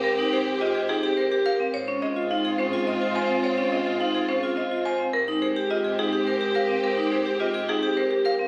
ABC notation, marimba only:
X:1
M:3/4
L:1/16
Q:1/4=106
K:Ab
V:1 name="Marimba"
B z c z e z A z c z f z | d z e z f z c z e z a z | d z e z f z c z e z a z | B z c z e z A z c z f z |
B z c z e z A z c z f z |]